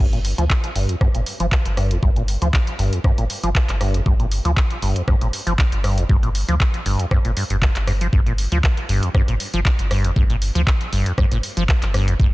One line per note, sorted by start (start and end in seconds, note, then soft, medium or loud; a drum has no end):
0.00 0.34 G1 loud
0.13 0.19 A#2 medium
0.13 closed hi-hat soft
0.25 open hi-hat loud
0.38 0.48 D2 medium
0.38 0.45 F3 loud
0.38 closed hi-hat medium
0.50 kick loud
0.50 clap loud
0.64 closed hi-hat soft
0.75 0.86 G1 medium
0.75 0.91 G2 medium
0.75 open hi-hat medium
0.89 0.96 F2 medium
0.89 closed hi-hat medium
1.01 1.08 G2 loud
1.01 kick loud
1.01 cross-stick medium
1.15 1.24 G1 medium
1.15 1.21 A#2 medium
1.15 closed hi-hat medium
1.26 open hi-hat loud
1.40 1.49 G1 medium
1.40 1.47 F3 loud
1.40 closed hi-hat medium
1.52 kick loud
1.52 clap loud
1.65 1.99 G1 loud
1.65 closed hi-hat medium
1.77 1.92 G2 medium
1.77 cross-stick medium
1.77 open hi-hat medium
1.91 1.97 F2 medium
1.91 closed hi-hat medium
2.03 2.37 G1 medium
2.03 2.10 G2 loud
2.03 kick loud
2.16 2.23 A#2 medium
2.16 closed hi-hat soft
2.28 open hi-hat loud
2.42 2.51 D2 medium
2.42 2.48 F3 loud
2.42 closed hi-hat medium
2.54 kick loud
2.54 clap loud
2.67 closed hi-hat soft
2.79 2.90 G1 medium
2.79 2.94 G2 medium
2.79 open hi-hat medium
2.93 2.99 F2 medium
2.93 closed hi-hat medium
3.04 3.12 G2 loud
3.04 kick loud
3.04 cross-stick medium
3.18 3.27 G1 medium
3.18 3.25 A#2 medium
3.18 closed hi-hat medium
3.30 open hi-hat loud
3.43 3.53 G1 loud
3.43 3.50 F3 loud
3.43 closed hi-hat medium
3.55 kick loud
3.55 clap loud
3.69 4.02 G1 loud
3.69 clap soft
3.69 closed hi-hat medium
3.81 3.96 G2 medium
3.81 cross-stick medium
3.81 open hi-hat medium
3.94 4.01 F2 medium
3.94 closed hi-hat medium
4.06 4.41 G1 loud
4.06 4.14 G2 loud
4.06 kick loud
4.20 4.26 A#2 medium
4.20 closed hi-hat soft
4.32 open hi-hat loud
4.45 4.55 D2 medium
4.45 4.52 F3 loud
4.45 closed hi-hat medium
4.57 kick loud
4.57 clap loud
4.71 closed hi-hat soft
4.82 4.93 G1 medium
4.82 4.97 G2 medium
4.82 open hi-hat loud
4.96 5.02 F2 medium
4.96 closed hi-hat medium
5.08 5.15 G2 loud
5.08 kick loud
5.08 cross-stick medium
5.21 5.31 G1 medium
5.21 5.28 A#2 medium
5.21 closed hi-hat soft
5.33 open hi-hat loud
5.47 5.56 G1 loud
5.47 5.53 F3 loud
5.47 closed hi-hat medium
5.59 kick loud
5.59 clap loud
5.72 6.06 G1 loud
5.72 closed hi-hat medium
5.84 5.99 G2 medium
5.84 cross-stick medium
5.84 open hi-hat medium
5.98 6.04 F2 medium
5.98 closed hi-hat medium
6.09 6.44 G1 loud
6.09 6.17 G2 loud
6.09 kick loud
6.23 6.30 A#2 medium
6.23 closed hi-hat soft
6.35 open hi-hat loud
6.48 6.58 D2 medium
6.48 6.55 F3 loud
6.48 closed hi-hat medium
6.60 kick loud
6.60 clap loud
6.74 closed hi-hat soft
6.86 6.97 G1 medium
6.86 7.01 G2 medium
6.86 open hi-hat loud
6.99 7.06 F2 medium
6.99 closed hi-hat medium
7.11 7.19 G2 loud
7.11 kick loud
7.11 cross-stick medium
7.25 7.34 G1 medium
7.25 7.31 A#2 medium
7.25 closed hi-hat soft
7.37 7.44 G2 medium
7.37 open hi-hat loud
7.50 7.70 G1 medium
7.50 7.57 G2 medium
7.50 closed hi-hat medium
7.62 kick loud
7.62 clap loud
7.76 8.09 G1 medium
7.76 clap soft
7.76 closed hi-hat medium
7.87 7.92 G2 medium
7.87 cross-stick medium
7.87 open hi-hat medium
8.01 8.08 F3 medium
8.01 closed hi-hat medium
8.13 8.48 G1 loud
8.13 8.20 G2 loud
8.13 kick loud
8.26 8.33 A#2 medium
8.26 closed hi-hat soft
8.38 open hi-hat loud
8.52 8.61 D2 medium
8.52 8.58 F3 loud
8.52 closed hi-hat medium
8.64 kick loud
8.64 clap loud
8.77 closed hi-hat soft
8.89 9.00 G1 medium
8.89 9.04 G2 medium
8.89 open hi-hat loud
9.03 9.09 F2 medium
9.03 closed hi-hat medium
9.15 9.22 G2 loud
9.15 kick loud
9.15 cross-stick medium
9.28 9.38 G1 medium
9.28 9.35 A#2 medium
9.28 closed hi-hat medium
9.40 open hi-hat loud
9.54 9.63 G1 loud
9.54 9.60 F3 loud
9.54 closed hi-hat medium
9.65 kick loud
9.65 clap loud
9.79 10.13 G1 loud
9.79 closed hi-hat soft
9.91 10.06 G2 medium
9.91 cross-stick medium
9.91 open hi-hat medium
10.04 10.11 F2 medium
10.04 closed hi-hat medium
10.16 10.51 G1 loud
10.16 10.24 G2 loud
10.16 kick loud
10.30 10.36 A#2 medium
10.30 closed hi-hat soft
10.42 open hi-hat loud
10.55 10.65 D2 medium
10.55 10.62 F3 loud
10.55 closed hi-hat medium
10.67 kick loud
10.67 clap loud
10.81 closed hi-hat soft
10.93 11.03 G1 medium
10.93 11.08 G2 medium
10.93 open hi-hat medium
11.06 11.13 F2 medium
11.06 closed hi-hat medium
11.18 11.25 G2 loud
11.18 kick loud
11.18 cross-stick medium
11.32 11.41 G1 medium
11.32 11.38 A#2 medium
11.32 closed hi-hat medium
11.43 open hi-hat loud
11.57 11.66 G1 loud
11.57 11.63 F3 loud
11.57 closed hi-hat medium
11.69 kick loud
11.69 clap loud
11.82 12.16 G1 loud
11.82 clap soft
11.82 closed hi-hat medium
11.94 12.09 G2 medium
11.94 cross-stick medium
11.94 open hi-hat medium
12.08 12.14 F2 medium
12.08 closed hi-hat medium
12.20 12.34 G1 loud
12.20 12.27 G2 loud
12.20 kick loud